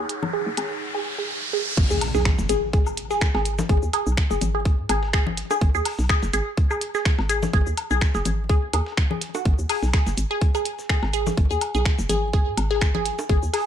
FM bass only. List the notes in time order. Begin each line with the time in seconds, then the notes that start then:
0.23 B1
0.47 F#1
0.57 G#1
1.77 G#1
1.91 D#2
2.15 B1
2.39 F#1
2.49 G#1
3.35 G#1
3.69 G#1
3.83 D#2
4.07 B1
4.31 F#1
4.41 G#1
4.79 G#2
4.89 G#1
5.61 G#1
5.75 D#2
5.99 B1
6.23 F#1
6.33 G#1
7.19 G#1
7.53 G#1
7.67 D#2
7.91 B1
8.15 F#1
8.26 G#1
8.49 D#2
8.74 D#2
9.45 G#1
9.59 D#2
9.83 B1
10.07 F#1
10.17 G#1
11.03 G#1
11.37 G#1
11.51 D#2
11.75 B1
11.99 F#1
12.10 G#1
12.47 G#2
12.57 G#1
13.29 G#1
13.43 D#2